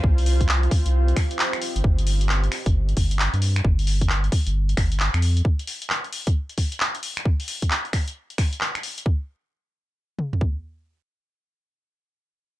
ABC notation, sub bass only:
X:1
M:4/4
L:1/16
Q:"Swing 16ths" 1/4=133
K:Cm
V:1 name="Sub bass" clef=bass
C,,6 z C,,3 z4 z G,,, | G,,,6 z G,,,3 G,,,3 G,,3 | G,,,6 z G,,,3 G,,,3 F,,3 | z16 |
z16 | z16 | z16 |]